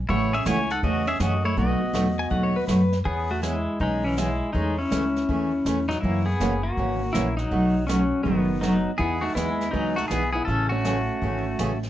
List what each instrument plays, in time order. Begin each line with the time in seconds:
0.09 upright bass A1, steel-string acoustic guitar C#3 E3 A3 C#4 F#4, hollow-body jazz guitar A3, pedal steel guitar E4 C#5, brush sweep, kick
0.33 hollow-body jazz guitar C#4, pedal steel guitar G#4 E5
0.45 upright bass C#2, steel-string acoustic guitar C#3 E3 A3 C#4 F#4, hollow-body jazz guitar E4, pedal steel guitar C#5 G#5, snare, hi-hat pedal
0.70 hollow-body jazz guitar D#4, pedal steel guitar A4 F#5, snare
0.83 upright bass E2, steel-string acoustic guitar C#3 E3 A3 C#4 F#4, hollow-body jazz guitar A3, pedal steel guitar F#4 D#5, brush sweep, kick
1.07 hollow-body jazz guitar C#4, pedal steel guitar G#4 E5
1.20 upright bass F#2, steel-string acoustic guitar C#3 E3 A3 C#4 F#4, hollow-body jazz guitar A3, pedal steel guitar F#4 D#5, snare, hi-hat pedal
1.45 hollow-body jazz guitar A3, pedal steel guitar E4 C#5
1.57 upright bass B1, steel-string acoustic guitar B2 F#3 A3 D#4 F#4, hollow-body jazz guitar B3, pedal steel guitar F#4 D#5, brush sweep, kick
1.93 upright bass E2, steel-string acoustic guitar B2 F#3 A3 D#4 F#4, snare, hi-hat pedal
2.19 pedal steel guitar G#5
2.30 upright bass D#2, steel-string acoustic guitar B2 F#3 A3 D#4 F#4, pedal steel guitar F#5, brush sweep, kick
2.43 pedal steel guitar C#5
2.56 pedal steel guitar B4
2.67 upright bass F#2, steel-string acoustic guitar B2 F#3 A3 D#4 F#4, pedal steel guitar B4, snare, hi-hat pedal
2.92 snare
3.04 upright bass E2, steel-string acoustic guitar E3 B3 C#4 G#4, pedal steel guitar B3 G#4, brush sweep, kick
3.31 pedal steel guitar A3 F#4
3.42 steel-string acoustic guitar E3 B3 C#4 G#4, pedal steel guitar G#3 E4, snare, hi-hat pedal
3.79 upright bass B1, steel-string acoustic guitar E3 B3 C#4 G#4, pedal steel guitar G#3 D#4, brush sweep, kick
4.04 pedal steel guitar E3 C#4
4.17 steel-string acoustic guitar E3 B3 C#4 G#4, pedal steel guitar G#3 E4, snare, hi-hat pedal
4.53 upright bass E2, steel-string acoustic guitar E3 A3 C#4 G#4, pedal steel guitar G#3 D#4, brush sweep, kick
4.78 pedal steel guitar C#4 E4
4.91 upright bass C#2, steel-string acoustic guitar E3 A3 C#4 G#4, snare, hi-hat pedal
5.16 snare
5.29 upright bass D#2, steel-string acoustic guitar E3 A3 C#4 G#4, brush sweep, kick
5.65 upright bass E2, steel-string acoustic guitar E3 A3 C#4 G#4, snare, hi-hat pedal
5.89 pedal steel guitar F#3 D#4, snare
6.01 upright bass F#2, steel-string acoustic guitar C#3 E3 A#3, pedal steel guitar A#3 E4, brush sweep, kick
6.05 steel-string acoustic guitar C#4 F#4
6.26 pedal steel guitar B3 G#4
6.40 upright bass F#1, steel-string acoustic guitar C#3 E3 A#3 C#4 F#4, snare, hi-hat pedal
6.63 pedal steel guitar A#3 F#4
6.77 upright bass G#1, steel-string acoustic guitar C#3 E3 A#3 C#4 F#4, brush sweep, kick
7.13 upright bass A#1, steel-string acoustic guitar C#3 E3 A#3 C#4 F#4, pedal steel guitar A#3 E4, snare, hi-hat pedal
7.37 pedal steel guitar F#3 D#4, snare
7.51 upright bass B1, steel-string acoustic guitar B2 F#3 A3 D#4 F#4, brush sweep, kick
7.87 steel-string acoustic guitar B2 F#3 A3 D#4 F#4, pedal steel guitar F#3 C#4, snare, hi-hat pedal
8.23 upright bass F#1, steel-string acoustic guitar B2 F#3 A3 D#4 F#4, pedal steel guitar D#3 B3, hollow-body jazz guitar F#3, brush sweep, kick
8.61 steel-string acoustic guitar B2 F#3 A3 D#4 F#4, pedal steel guitar F#3 D#4, hollow-body jazz guitar B3, snare, hi-hat pedal
8.98 upright bass E2, steel-string acoustic guitar E3 B3 D#4 G#4, pedal steel guitar B3 G#4, hollow-body jazz guitar E4, brush sweep, kick
9.21 pedal steel guitar A3 F#4, hollow-body jazz guitar D#4
9.35 upright bass D#2, steel-string acoustic guitar E3 B3 D#4 G#4, pedal steel guitar G#3 E4, hollow-body jazz guitar B3, snare, hi-hat pedal
9.61 snare
9.71 upright bass C#2, steel-string acoustic guitar E3 B3 D#4 G#4, pedal steel guitar F#3 D#4, hollow-body jazz guitar B3, brush sweep, kick
9.96 pedal steel guitar A3 F#4, hollow-body jazz guitar D#4
10.08 upright bass B1, steel-string acoustic guitar E3 B3 D#4 G#4, pedal steel guitar B3 G#4, hollow-body jazz guitar E4, snare, hi-hat pedal
10.33 pedal steel guitar B3 G#4, hollow-body jazz guitar E4
10.45 upright bass A1, steel-string acoustic guitar C#3 E3 A3, pedal steel guitar C#4 A4, hollow-body jazz guitar E4, brush sweep, kick
10.49 steel-string acoustic guitar C#4 G#4
10.69 pedal steel guitar A3 F#4, hollow-body jazz guitar C#4
10.85 steel-string acoustic guitar C#3 E3 A3 C#4 G#4, snare, hi-hat pedal
11.22 upright bass G#1, steel-string acoustic guitar C#3 E3 A3 C#4 G#4, brush sweep, kick
11.59 upright bass A1, steel-string acoustic guitar C#3 E3 A3 C#4 G#4, snare, hi-hat pedal
11.83 snare